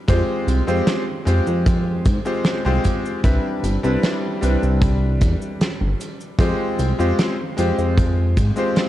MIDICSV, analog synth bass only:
0, 0, Header, 1, 2, 480
1, 0, Start_track
1, 0, Tempo, 789474
1, 49, Time_signature, 4, 2, 24, 8
1, 5403, End_track
2, 0, Start_track
2, 0, Title_t, "Analog synth bass"
2, 0, Program_c, 0, 38
2, 51, Note_on_c, 0, 41, 105
2, 136, Note_off_c, 0, 41, 0
2, 289, Note_on_c, 0, 36, 97
2, 374, Note_off_c, 0, 36, 0
2, 412, Note_on_c, 0, 41, 93
2, 494, Note_off_c, 0, 41, 0
2, 769, Note_on_c, 0, 41, 81
2, 855, Note_off_c, 0, 41, 0
2, 892, Note_on_c, 0, 41, 87
2, 1251, Note_on_c, 0, 44, 102
2, 1260, Note_off_c, 0, 41, 0
2, 1335, Note_off_c, 0, 44, 0
2, 1613, Note_on_c, 0, 36, 86
2, 1694, Note_off_c, 0, 36, 0
2, 1969, Note_on_c, 0, 36, 106
2, 2055, Note_off_c, 0, 36, 0
2, 2209, Note_on_c, 0, 31, 99
2, 2294, Note_off_c, 0, 31, 0
2, 2332, Note_on_c, 0, 36, 97
2, 2414, Note_off_c, 0, 36, 0
2, 2690, Note_on_c, 0, 36, 81
2, 2775, Note_off_c, 0, 36, 0
2, 2813, Note_on_c, 0, 36, 89
2, 3172, Note_on_c, 0, 40, 99
2, 3181, Note_off_c, 0, 36, 0
2, 3256, Note_off_c, 0, 40, 0
2, 3533, Note_on_c, 0, 31, 87
2, 3614, Note_off_c, 0, 31, 0
2, 3883, Note_on_c, 0, 41, 108
2, 3972, Note_off_c, 0, 41, 0
2, 4130, Note_on_c, 0, 36, 99
2, 4215, Note_off_c, 0, 36, 0
2, 4252, Note_on_c, 0, 41, 93
2, 4334, Note_off_c, 0, 41, 0
2, 4609, Note_on_c, 0, 41, 81
2, 4695, Note_off_c, 0, 41, 0
2, 4732, Note_on_c, 0, 41, 91
2, 5090, Note_on_c, 0, 44, 97
2, 5099, Note_off_c, 0, 41, 0
2, 5175, Note_off_c, 0, 44, 0
2, 5403, End_track
0, 0, End_of_file